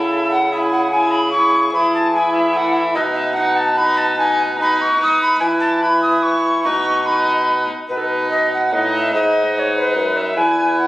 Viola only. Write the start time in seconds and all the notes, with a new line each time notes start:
Already playing: E4
0.50 E4
0.91 E4
1.32 E4
1.73 E4
2.14 E4
2.95 D#4
3.36 D#4
3.78 D#4
4.18 D#4
4.59 D#4
5.00 D#4
5.41 E4
5.83 E4
6.65 D#4
7.07 D#4
7.91 D#4
8.74 D#4
9.14 D#4
10.37 E4